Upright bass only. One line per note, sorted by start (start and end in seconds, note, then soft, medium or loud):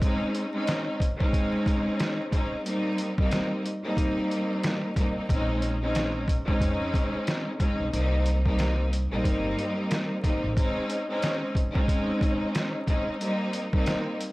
5.29 6.44 A#1 loud
6.48 6.59 C#2 medium
6.61 6.89 F2 loud
7.80 7.91 B1 medium
7.93 9.08 C2 loud
9.12 9.23 A#1 medium
9.25 9.53 G1 medium
10.44 10.55 A1 medium